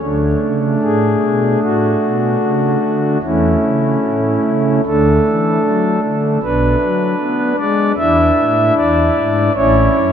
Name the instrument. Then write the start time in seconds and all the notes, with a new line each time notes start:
pipe organ
0.01 D2 D3 A3 D4
0.42 C#3
0.82 A2 G#4
1.22 B2
1.63 A2 F#4
2.03 B2
2.43 C#3
2.83 D3
3.23 E2 E3 A3 C#4 E4
3.63 C#3
4.04 A2
4.44 C#3
4.86 D2 D3 A3 D4 A4
5.26 E3
5.64 F#3
6.04 D3
6.43 B1 B2 D4 B4
6.82 F#3
7.20 B3
7.58 G#3 D5
7.98 E2 E3 D4 E4 E5
8.37 A2
8.77 E2 D5
9.15 G#2
9.55 A1 A2 C#4 E4 C#5
9.95 F#2